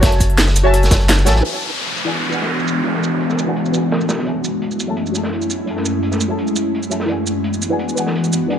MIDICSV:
0, 0, Header, 1, 6, 480
1, 0, Start_track
1, 0, Tempo, 352941
1, 41, Time_signature, 4, 2, 24, 8
1, 11680, End_track
2, 0, Start_track
2, 0, Title_t, "Synth stab"
2, 0, Program_c, 0, 62
2, 0, Control_c, 0, 64, 127
2, 0, Note_on_c, 0, 66, 81
2, 0, Note_on_c, 0, 73, 82
2, 0, Note_on_c, 0, 76, 81
2, 0, Note_on_c, 0, 80, 81
2, 0, Note_on_c, 0, 81, 98
2, 15, Note_off_c, 0, 73, 0
2, 15, Note_on_c, 0, 73, 75
2, 37, Note_off_c, 0, 76, 0
2, 37, Note_on_c, 0, 76, 73
2, 58, Note_off_c, 0, 80, 0
2, 58, Note_on_c, 0, 80, 73
2, 80, Note_off_c, 0, 81, 0
2, 80, Note_on_c, 0, 81, 89
2, 833, Note_off_c, 0, 66, 0
2, 844, Note_off_c, 0, 73, 0
2, 854, Note_off_c, 0, 76, 0
2, 862, Note_on_c, 0, 66, 99
2, 865, Note_off_c, 0, 80, 0
2, 872, Note_on_c, 0, 73, 91
2, 876, Note_off_c, 0, 81, 0
2, 882, Note_on_c, 0, 76, 92
2, 894, Note_on_c, 0, 80, 91
2, 905, Note_on_c, 0, 81, 109
2, 1201, Note_off_c, 0, 66, 0
2, 1206, Note_off_c, 0, 73, 0
2, 1211, Note_off_c, 0, 76, 0
2, 1217, Note_off_c, 0, 80, 0
2, 1223, Note_off_c, 0, 81, 0
2, 1699, Note_on_c, 0, 66, 86
2, 1708, Note_on_c, 0, 73, 78
2, 1719, Note_on_c, 0, 76, 80
2, 1729, Note_on_c, 0, 80, 79
2, 1740, Note_on_c, 0, 81, 94
2, 1913, Note_on_c, 0, 64, 73
2, 1922, Note_off_c, 0, 66, 0
2, 1927, Note_off_c, 0, 73, 0
2, 1933, Note_off_c, 0, 76, 0
2, 1933, Note_on_c, 0, 71, 68
2, 1938, Note_off_c, 0, 80, 0
2, 1943, Note_off_c, 0, 81, 0
2, 1957, Note_on_c, 0, 74, 67
2, 1981, Control_c, 0, 64, 0
2, 1999, Note_on_c, 0, 80, 81
2, 2229, Control_c, 0, 64, 127
2, 2753, Note_off_c, 0, 64, 0
2, 2763, Note_off_c, 0, 71, 0
2, 2775, Note_off_c, 0, 74, 0
2, 2786, Note_on_c, 0, 64, 91
2, 2795, Note_on_c, 0, 71, 84
2, 2796, Note_off_c, 0, 80, 0
2, 2806, Note_on_c, 0, 74, 83
2, 2817, Note_on_c, 0, 78, 81
2, 2828, Note_on_c, 0, 80, 98
2, 3103, Note_off_c, 0, 64, 0
2, 3120, Note_on_c, 0, 64, 82
2, 3125, Note_off_c, 0, 71, 0
2, 3133, Note_off_c, 0, 74, 0
2, 3139, Note_off_c, 0, 78, 0
2, 3141, Note_on_c, 0, 71, 75
2, 3144, Note_off_c, 0, 80, 0
2, 3162, Note_on_c, 0, 74, 76
2, 3185, Note_on_c, 0, 78, 77
2, 3205, Note_on_c, 0, 80, 90
2, 3825, Note_off_c, 0, 64, 0
2, 3841, Note_on_c, 0, 64, 73
2, 3844, Note_off_c, 0, 71, 0
2, 3854, Note_off_c, 0, 74, 0
2, 3864, Note_on_c, 0, 71, 67
2, 3866, Note_off_c, 0, 78, 0
2, 3876, Note_off_c, 0, 80, 0
2, 3884, Note_on_c, 0, 74, 70
2, 3905, Note_on_c, 0, 78, 69
2, 3926, Note_on_c, 0, 80, 82
2, 4677, Note_off_c, 0, 64, 0
2, 4688, Note_off_c, 0, 71, 0
2, 4698, Note_off_c, 0, 74, 0
2, 4708, Note_on_c, 0, 64, 90
2, 4709, Note_off_c, 0, 78, 0
2, 4719, Note_off_c, 0, 80, 0
2, 4720, Note_on_c, 0, 71, 85
2, 4731, Note_on_c, 0, 74, 84
2, 4741, Note_on_c, 0, 78, 82
2, 4752, Note_on_c, 0, 80, 98
2, 5028, Note_off_c, 0, 64, 0
2, 5045, Note_on_c, 0, 64, 82
2, 5047, Note_off_c, 0, 71, 0
2, 5056, Note_off_c, 0, 74, 0
2, 5061, Note_off_c, 0, 78, 0
2, 5063, Note_on_c, 0, 71, 77
2, 5066, Note_off_c, 0, 80, 0
2, 5087, Note_on_c, 0, 74, 76
2, 5108, Note_on_c, 0, 78, 74
2, 5129, Note_on_c, 0, 80, 89
2, 5756, Note_off_c, 0, 64, 0
2, 5763, Note_on_c, 0, 66, 74
2, 5765, Note_off_c, 0, 71, 0
2, 5777, Note_off_c, 0, 74, 0
2, 5784, Note_on_c, 0, 73, 67
2, 5787, Note_off_c, 0, 78, 0
2, 5798, Note_off_c, 0, 80, 0
2, 5806, Note_on_c, 0, 76, 68
2, 5820, Control_c, 0, 64, 0
2, 5826, Note_on_c, 0, 80, 68
2, 5847, Note_on_c, 0, 81, 84
2, 6074, Control_c, 0, 64, 127
2, 6598, Note_off_c, 0, 66, 0
2, 6608, Note_off_c, 0, 73, 0
2, 6619, Note_off_c, 0, 76, 0
2, 6625, Note_on_c, 0, 66, 91
2, 6629, Note_off_c, 0, 80, 0
2, 6637, Note_on_c, 0, 73, 81
2, 6640, Note_off_c, 0, 81, 0
2, 6646, Note_on_c, 0, 76, 82
2, 6658, Note_on_c, 0, 80, 83
2, 6668, Note_on_c, 0, 81, 100
2, 6945, Note_off_c, 0, 66, 0
2, 6961, Note_on_c, 0, 66, 82
2, 6964, Note_off_c, 0, 73, 0
2, 6974, Note_off_c, 0, 76, 0
2, 6979, Note_off_c, 0, 80, 0
2, 6981, Note_on_c, 0, 73, 76
2, 6985, Note_off_c, 0, 81, 0
2, 7003, Note_on_c, 0, 76, 76
2, 7025, Note_on_c, 0, 80, 74
2, 7046, Note_on_c, 0, 81, 91
2, 7662, Note_off_c, 0, 66, 0
2, 7678, Note_on_c, 0, 66, 75
2, 7681, Note_off_c, 0, 73, 0
2, 7695, Note_off_c, 0, 76, 0
2, 7697, Note_on_c, 0, 73, 67
2, 7706, Note_off_c, 0, 80, 0
2, 7716, Note_off_c, 0, 81, 0
2, 7720, Note_on_c, 0, 76, 69
2, 7741, Note_on_c, 0, 80, 69
2, 7762, Note_on_c, 0, 81, 83
2, 8515, Note_off_c, 0, 66, 0
2, 8525, Note_off_c, 0, 73, 0
2, 8536, Note_off_c, 0, 76, 0
2, 8544, Note_on_c, 0, 66, 89
2, 8547, Note_off_c, 0, 80, 0
2, 8554, Note_on_c, 0, 73, 86
2, 8557, Note_off_c, 0, 81, 0
2, 8566, Note_on_c, 0, 76, 81
2, 8576, Note_on_c, 0, 80, 85
2, 8586, Note_on_c, 0, 81, 100
2, 8882, Note_off_c, 0, 66, 0
2, 8888, Note_off_c, 0, 73, 0
2, 8894, Note_off_c, 0, 76, 0
2, 8899, Note_off_c, 0, 80, 0
2, 8904, Note_off_c, 0, 81, 0
2, 9382, Note_on_c, 0, 66, 77
2, 9390, Note_on_c, 0, 73, 70
2, 9402, Note_on_c, 0, 76, 73
2, 9413, Note_on_c, 0, 80, 72
2, 9422, Note_on_c, 0, 81, 88
2, 9601, Note_on_c, 0, 64, 75
2, 9604, Note_off_c, 0, 66, 0
2, 9608, Note_off_c, 0, 73, 0
2, 9614, Note_off_c, 0, 76, 0
2, 9620, Note_off_c, 0, 80, 0
2, 9623, Note_on_c, 0, 71, 67
2, 9624, Note_off_c, 0, 81, 0
2, 9644, Note_on_c, 0, 74, 70
2, 9658, Control_c, 0, 64, 0
2, 9667, Note_on_c, 0, 78, 71
2, 9688, Note_on_c, 0, 80, 82
2, 9921, Control_c, 0, 64, 127
2, 10437, Note_off_c, 0, 64, 0
2, 10448, Note_off_c, 0, 71, 0
2, 10458, Note_off_c, 0, 74, 0
2, 10466, Note_on_c, 0, 64, 90
2, 10470, Note_off_c, 0, 78, 0
2, 10476, Note_on_c, 0, 71, 84
2, 10480, Note_off_c, 0, 80, 0
2, 10488, Note_on_c, 0, 74, 83
2, 10499, Note_on_c, 0, 78, 83
2, 10510, Note_on_c, 0, 80, 98
2, 10782, Note_off_c, 0, 64, 0
2, 10798, Note_on_c, 0, 64, 83
2, 10802, Note_off_c, 0, 71, 0
2, 10814, Note_off_c, 0, 74, 0
2, 10819, Note_on_c, 0, 71, 78
2, 10820, Note_off_c, 0, 78, 0
2, 10825, Note_off_c, 0, 80, 0
2, 10840, Note_on_c, 0, 74, 77
2, 10860, Note_on_c, 0, 78, 75
2, 10882, Note_on_c, 0, 80, 90
2, 11499, Note_off_c, 0, 64, 0
2, 11515, Note_on_c, 0, 64, 74
2, 11522, Note_off_c, 0, 71, 0
2, 11533, Note_off_c, 0, 74, 0
2, 11537, Note_on_c, 0, 71, 67
2, 11543, Note_off_c, 0, 78, 0
2, 11554, Note_off_c, 0, 80, 0
2, 11559, Note_on_c, 0, 74, 70
2, 11580, Note_on_c, 0, 78, 68
2, 11599, Note_on_c, 0, 80, 84
2, 11680, Note_off_c, 0, 64, 0
2, 11680, Note_off_c, 0, 71, 0
2, 11680, Note_off_c, 0, 74, 0
2, 11680, Note_off_c, 0, 78, 0
2, 11680, Note_off_c, 0, 80, 0
2, 11680, End_track
3, 0, Start_track
3, 0, Title_t, "Ambient pad"
3, 0, Program_c, 1, 92
3, 1962, Note_on_c, 1, 59, 69
3, 1963, Note_on_c, 1, 66, 71
3, 1964, Note_on_c, 1, 52, 76
3, 1965, Note_on_c, 1, 56, 83
3, 1965, Note_on_c, 1, 62, 70
3, 5763, Note_off_c, 1, 59, 0
3, 5764, Note_off_c, 1, 52, 0
3, 5764, Note_off_c, 1, 62, 0
3, 5764, Note_off_c, 1, 66, 0
3, 5804, Note_on_c, 1, 57, 70
3, 5805, Note_on_c, 1, 42, 75
3, 5806, Note_on_c, 1, 61, 69
3, 5807, Note_on_c, 1, 64, 69
3, 9604, Note_off_c, 1, 57, 0
3, 9605, Note_off_c, 1, 42, 0
3, 9606, Note_off_c, 1, 61, 0
3, 9606, Note_off_c, 1, 64, 0
3, 9641, Note_on_c, 1, 66, 68
3, 9643, Note_on_c, 1, 52, 75
3, 9643, Note_on_c, 1, 59, 70
3, 9643, Note_on_c, 1, 62, 71
3, 11680, Note_off_c, 1, 52, 0
3, 11680, Note_off_c, 1, 56, 0
3, 11680, Note_off_c, 1, 59, 0
3, 11680, Note_off_c, 1, 62, 0
3, 11680, Note_off_c, 1, 66, 0
3, 11680, End_track
4, 0, Start_track
4, 0, Title_t, "Sub bass"
4, 0, Program_c, 2, 38
4, 0, Note_on_c, 2, 30, 94
4, 1223, Note_off_c, 2, 30, 0
4, 1238, Note_on_c, 2, 30, 86
4, 1720, Note_on_c, 2, 33, 81
4, 1740, Note_off_c, 2, 30, 0
4, 1938, Note_off_c, 2, 33, 0
4, 11680, End_track
5, 0, Start_track
5, 0, Title_t, "Downlifter"
5, 0, Program_c, 3, 103
5, 1963, Note_on_c, 3, 60, 63
5, 5802, Note_off_c, 3, 60, 0
5, 11680, End_track
6, 0, Start_track
6, 0, Title_t, "Drums"
6, 37, Note_on_c, 9, 36, 117
6, 37, Note_on_c, 9, 42, 101
6, 40, Note_on_c, 9, 38, 115
6, 46, Note_off_c, 9, 42, 0
6, 46, Note_on_c, 9, 42, 86
6, 165, Note_off_c, 9, 42, 0
6, 165, Note_on_c, 9, 42, 40
6, 173, Note_off_c, 9, 36, 0
6, 176, Note_off_c, 9, 38, 0
6, 278, Note_on_c, 9, 36, 63
6, 280, Note_off_c, 9, 42, 0
6, 280, Note_on_c, 9, 42, 72
6, 280, Note_on_c, 9, 82, 64
6, 287, Note_off_c, 9, 42, 0
6, 287, Note_on_c, 9, 42, 65
6, 404, Note_off_c, 9, 42, 0
6, 404, Note_on_c, 9, 42, 40
6, 414, Note_off_c, 9, 36, 0
6, 416, Note_off_c, 9, 82, 0
6, 518, Note_off_c, 9, 42, 0
6, 518, Note_on_c, 9, 42, 83
6, 519, Note_off_c, 9, 42, 0
6, 519, Note_on_c, 9, 38, 124
6, 519, Note_on_c, 9, 42, 102
6, 524, Note_off_c, 9, 38, 0
6, 524, Note_on_c, 9, 38, 119
6, 644, Note_on_c, 9, 37, 50
6, 644, Note_on_c, 9, 82, 29
6, 655, Note_off_c, 9, 38, 0
6, 655, Note_off_c, 9, 42, 0
6, 655, Note_on_c, 9, 38, 52
6, 760, Note_off_c, 9, 82, 0
6, 760, Note_on_c, 9, 42, 72
6, 760, Note_on_c, 9, 82, 63
6, 762, Note_off_c, 9, 42, 0
6, 762, Note_on_c, 9, 42, 75
6, 780, Note_off_c, 9, 37, 0
6, 791, Note_off_c, 9, 38, 0
6, 896, Note_off_c, 9, 82, 0
6, 898, Note_off_c, 9, 42, 0
6, 1002, Note_on_c, 9, 37, 34
6, 1002, Note_on_c, 9, 42, 102
6, 1130, Note_off_c, 9, 42, 0
6, 1130, Note_on_c, 9, 42, 41
6, 1130, Note_on_c, 9, 82, 30
6, 1138, Note_off_c, 9, 37, 0
6, 1138, Note_on_c, 9, 38, 49
6, 1239, Note_on_c, 9, 36, 101
6, 1241, Note_off_c, 9, 42, 0
6, 1241, Note_off_c, 9, 82, 0
6, 1241, Note_on_c, 9, 42, 72
6, 1241, Note_on_c, 9, 82, 62
6, 1245, Note_off_c, 9, 42, 0
6, 1245, Note_on_c, 9, 42, 82
6, 1248, Note_off_c, 9, 38, 0
6, 1248, Note_on_c, 9, 38, 108
6, 1366, Note_off_c, 9, 42, 0
6, 1366, Note_on_c, 9, 42, 44
6, 1375, Note_off_c, 9, 36, 0
6, 1377, Note_off_c, 9, 82, 0
6, 1384, Note_off_c, 9, 38, 0
6, 1480, Note_off_c, 9, 42, 0
6, 1480, Note_on_c, 9, 42, 73
6, 1483, Note_off_c, 9, 42, 0
6, 1483, Note_on_c, 9, 38, 122
6, 1483, Note_on_c, 9, 42, 103
6, 1486, Note_off_c, 9, 38, 0
6, 1486, Note_on_c, 9, 38, 103
6, 1609, Note_off_c, 9, 38, 0
6, 1609, Note_on_c, 9, 38, 36
6, 1609, Note_on_c, 9, 82, 29
6, 1619, Note_off_c, 9, 42, 0
6, 1716, Note_on_c, 9, 42, 81
6, 1723, Note_off_c, 9, 42, 0
6, 1723, Note_off_c, 9, 82, 0
6, 1723, Note_on_c, 9, 42, 71
6, 1723, Note_on_c, 9, 82, 62
6, 1726, Note_off_c, 9, 38, 0
6, 1726, Note_on_c, 9, 38, 99
6, 1849, Note_off_c, 9, 38, 0
6, 1849, Note_on_c, 9, 38, 55
6, 1859, Note_off_c, 9, 42, 0
6, 1859, Note_off_c, 9, 82, 0
6, 1962, Note_on_c, 9, 42, 87
6, 1985, Note_off_c, 9, 38, 0
6, 2098, Note_off_c, 9, 42, 0
6, 2196, Note_on_c, 9, 42, 57
6, 2203, Note_on_c, 9, 82, 54
6, 2332, Note_off_c, 9, 42, 0
6, 2339, Note_off_c, 9, 82, 0
6, 2446, Note_on_c, 9, 42, 72
6, 2568, Note_on_c, 9, 82, 24
6, 2582, Note_off_c, 9, 42, 0
6, 2682, Note_off_c, 9, 82, 0
6, 2682, Note_on_c, 9, 82, 51
6, 2684, Note_on_c, 9, 42, 57
6, 2818, Note_off_c, 9, 82, 0
6, 2820, Note_off_c, 9, 42, 0
6, 2910, Note_on_c, 9, 42, 86
6, 3046, Note_off_c, 9, 42, 0
6, 3049, Note_on_c, 9, 82, 25
6, 3161, Note_off_c, 9, 82, 0
6, 3161, Note_on_c, 9, 82, 52
6, 3163, Note_on_c, 9, 42, 61
6, 3291, Note_on_c, 9, 38, 49
6, 3297, Note_off_c, 9, 82, 0
6, 3299, Note_off_c, 9, 42, 0
6, 3408, Note_on_c, 9, 42, 71
6, 3427, Note_off_c, 9, 38, 0
6, 3531, Note_on_c, 9, 82, 25
6, 3544, Note_off_c, 9, 42, 0
6, 3638, Note_on_c, 9, 42, 64
6, 3644, Note_off_c, 9, 82, 0
6, 3644, Note_on_c, 9, 82, 51
6, 3774, Note_off_c, 9, 42, 0
6, 3780, Note_off_c, 9, 82, 0
6, 3875, Note_on_c, 9, 42, 79
6, 4005, Note_on_c, 9, 38, 38
6, 4011, Note_off_c, 9, 42, 0
6, 4124, Note_on_c, 9, 42, 63
6, 4128, Note_on_c, 9, 82, 51
6, 4141, Note_off_c, 9, 38, 0
6, 4260, Note_off_c, 9, 42, 0
6, 4264, Note_off_c, 9, 82, 0
6, 4362, Note_on_c, 9, 42, 73
6, 4484, Note_on_c, 9, 38, 41
6, 4492, Note_on_c, 9, 82, 23
6, 4498, Note_off_c, 9, 42, 0
6, 4602, Note_on_c, 9, 42, 64
6, 4606, Note_off_c, 9, 82, 0
6, 4606, Note_on_c, 9, 82, 50
6, 4620, Note_off_c, 9, 38, 0
6, 4738, Note_off_c, 9, 42, 0
6, 4742, Note_off_c, 9, 82, 0
6, 4843, Note_on_c, 9, 42, 74
6, 4971, Note_on_c, 9, 82, 24
6, 4979, Note_off_c, 9, 42, 0
6, 5085, Note_off_c, 9, 82, 0
6, 5085, Note_on_c, 9, 82, 51
6, 5087, Note_on_c, 9, 42, 61
6, 5221, Note_off_c, 9, 82, 0
6, 5223, Note_off_c, 9, 42, 0
6, 5325, Note_on_c, 9, 42, 73
6, 5335, Note_on_c, 9, 38, 92
6, 5452, Note_on_c, 9, 82, 24
6, 5461, Note_off_c, 9, 42, 0
6, 5471, Note_off_c, 9, 38, 0
6, 5559, Note_on_c, 9, 42, 71
6, 5560, Note_on_c, 9, 38, 91
6, 5566, Note_off_c, 9, 82, 0
6, 5566, Note_on_c, 9, 82, 51
6, 5694, Note_off_c, 9, 38, 0
6, 5694, Note_on_c, 9, 38, 49
6, 5695, Note_off_c, 9, 42, 0
6, 5702, Note_off_c, 9, 82, 0
6, 5801, Note_on_c, 9, 42, 79
6, 5830, Note_off_c, 9, 38, 0
6, 5937, Note_off_c, 9, 42, 0
6, 6041, Note_on_c, 9, 42, 64
6, 6045, Note_on_c, 9, 82, 49
6, 6177, Note_off_c, 9, 42, 0
6, 6181, Note_off_c, 9, 82, 0
6, 6281, Note_on_c, 9, 42, 79
6, 6411, Note_on_c, 9, 82, 23
6, 6417, Note_off_c, 9, 42, 0
6, 6525, Note_off_c, 9, 82, 0
6, 6525, Note_on_c, 9, 82, 49
6, 6532, Note_on_c, 9, 42, 65
6, 6661, Note_off_c, 9, 82, 0
6, 6668, Note_off_c, 9, 42, 0
6, 6755, Note_on_c, 9, 42, 82
6, 6889, Note_on_c, 9, 82, 24
6, 6891, Note_off_c, 9, 42, 0
6, 7003, Note_off_c, 9, 82, 0
6, 7003, Note_on_c, 9, 42, 63
6, 7003, Note_on_c, 9, 82, 50
6, 7119, Note_on_c, 9, 38, 45
6, 7139, Note_off_c, 9, 42, 0
6, 7139, Note_off_c, 9, 82, 0
6, 7246, Note_on_c, 9, 42, 73
6, 7255, Note_off_c, 9, 38, 0
6, 7367, Note_off_c, 9, 42, 0
6, 7367, Note_on_c, 9, 42, 38
6, 7370, Note_on_c, 9, 82, 24
6, 7479, Note_off_c, 9, 42, 0
6, 7479, Note_on_c, 9, 42, 67
6, 7484, Note_off_c, 9, 82, 0
6, 7484, Note_on_c, 9, 82, 50
6, 7615, Note_off_c, 9, 42, 0
6, 7620, Note_off_c, 9, 82, 0
6, 7715, Note_on_c, 9, 42, 79
6, 7843, Note_on_c, 9, 38, 36
6, 7851, Note_off_c, 9, 42, 0
6, 7957, Note_on_c, 9, 42, 57
6, 7963, Note_on_c, 9, 82, 51
6, 7979, Note_off_c, 9, 38, 0
6, 8093, Note_off_c, 9, 42, 0
6, 8099, Note_off_c, 9, 82, 0
6, 8197, Note_on_c, 9, 42, 79
6, 8320, Note_on_c, 9, 38, 42
6, 8330, Note_on_c, 9, 82, 24
6, 8333, Note_off_c, 9, 42, 0
6, 8435, Note_on_c, 9, 42, 62
6, 8440, Note_off_c, 9, 82, 0
6, 8440, Note_on_c, 9, 82, 49
6, 8456, Note_off_c, 9, 38, 0
6, 8571, Note_off_c, 9, 42, 0
6, 8576, Note_off_c, 9, 82, 0
6, 8682, Note_on_c, 9, 42, 70
6, 8808, Note_on_c, 9, 82, 24
6, 8818, Note_off_c, 9, 42, 0
6, 8921, Note_off_c, 9, 82, 0
6, 8921, Note_on_c, 9, 82, 52
6, 8923, Note_on_c, 9, 42, 60
6, 9057, Note_off_c, 9, 82, 0
6, 9059, Note_off_c, 9, 42, 0
6, 9174, Note_on_c, 9, 42, 74
6, 9288, Note_on_c, 9, 82, 25
6, 9310, Note_off_c, 9, 42, 0
6, 9401, Note_on_c, 9, 42, 59
6, 9403, Note_off_c, 9, 82, 0
6, 9403, Note_on_c, 9, 82, 50
6, 9518, Note_on_c, 9, 38, 48
6, 9537, Note_off_c, 9, 42, 0
6, 9539, Note_off_c, 9, 82, 0
6, 9634, Note_on_c, 9, 42, 82
6, 9654, Note_off_c, 9, 38, 0
6, 9770, Note_off_c, 9, 42, 0
6, 9880, Note_on_c, 9, 42, 56
6, 9884, Note_on_c, 9, 82, 53
6, 10016, Note_off_c, 9, 42, 0
6, 10020, Note_off_c, 9, 82, 0
6, 10119, Note_on_c, 9, 42, 78
6, 10249, Note_on_c, 9, 82, 24
6, 10255, Note_off_c, 9, 42, 0
6, 10364, Note_on_c, 9, 42, 64
6, 10365, Note_off_c, 9, 82, 0
6, 10365, Note_on_c, 9, 82, 53
6, 10500, Note_off_c, 9, 42, 0
6, 10501, Note_off_c, 9, 82, 0
6, 10598, Note_on_c, 9, 42, 79
6, 10731, Note_on_c, 9, 82, 26
6, 10734, Note_off_c, 9, 42, 0
6, 10844, Note_off_c, 9, 82, 0
6, 10844, Note_on_c, 9, 82, 53
6, 10845, Note_on_c, 9, 42, 56
6, 10969, Note_on_c, 9, 38, 44
6, 10980, Note_off_c, 9, 82, 0
6, 10981, Note_off_c, 9, 42, 0
6, 11088, Note_on_c, 9, 42, 85
6, 11105, Note_off_c, 9, 38, 0
6, 11204, Note_off_c, 9, 42, 0
6, 11204, Note_on_c, 9, 42, 41
6, 11209, Note_on_c, 9, 82, 25
6, 11325, Note_off_c, 9, 82, 0
6, 11325, Note_on_c, 9, 82, 54
6, 11333, Note_off_c, 9, 42, 0
6, 11333, Note_on_c, 9, 42, 63
6, 11461, Note_off_c, 9, 82, 0
6, 11469, Note_off_c, 9, 42, 0
6, 11563, Note_on_c, 9, 42, 87
6, 11680, Note_off_c, 9, 42, 0
6, 11680, End_track
0, 0, End_of_file